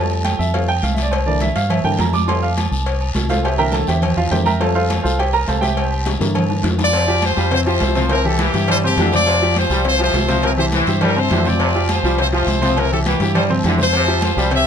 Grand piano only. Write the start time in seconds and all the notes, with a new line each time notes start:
Already playing: F3 G3 A3 A5
0.24 G5
0.39 E5
0.54 F3 G3 A3 F5
0.69 G5
0.83 F5
0.93 E5
1.03 D5
1.12 C5
1.26 D3 E3 A#3 D5
1.41 E5
1.56 F5
1.69 E5
1.84 D3 E3 A#3 G5
2.00 A#5
2.14 D6
2.28 F3 G3 A3 C6
2.43 F5
3.30 F4 A4 C5 F5
3.45 G4 C5 E5 G5
3.58 D3 E3 A#3 A#4 E5 G5 A#5
3.72 A4 A5
3.88 G4 C5 E5 G5
4.17 F4 F5
4.31 D3 E3 A#3 G4 C5 E5 G5
4.46 A#4 E5 G5 A#5
4.60 F3 G3 A3 A4 C5 F5 A5
4.75 F4 A4 C5 F5
5.03 F4 A4 C5 F5
5.19 G4 C5 G5
5.33 A#4 A#5
5.48 A4 C5 F5 A5
5.61 G4 C5 E5 G5
6.19 D3 E3 A#3
7.07 F3 F4 G4
7.37 F3 F4 G4
7.51 C3 C4 C5
7.66 F3 F4 G4
7.95 C3 C4 C5
8.11 C3 C4 C5
8.25 E3 E4 G4
8.55 E3 E4 G4
8.84 C3 C4 C5
8.99 E3 E4 G4
9.13 C3 C4 C5
9.42 F3 F4 G4
9.71 F3 F4 G4
9.84 C3 C4 C5
9.99 F3 F4 G4
10.28 C3 C4 C5
10.43 C3 C4 C5
10.57 E3 E4 G4
10.87 E3 E4 G4
11.16 C3 C4 C5
11.31 E3 E4 G4
11.46 C3 C4 C5
11.75 F3 F4 G4
12.05 F3 F4 G4
12.19 C3 C4 C5
12.33 F3 F4 G4
12.61 C3 C4 C5
12.77 C3 C4 C5
12.92 E3 E4 G4
13.21 E3 E4 G4
13.50 C3 C4 C5
13.65 E3 E4 G4
13.78 C3 C4 C5
14.07 F3 F4 G4
14.37 F3 F4 G4
14.51 C3 C4 C5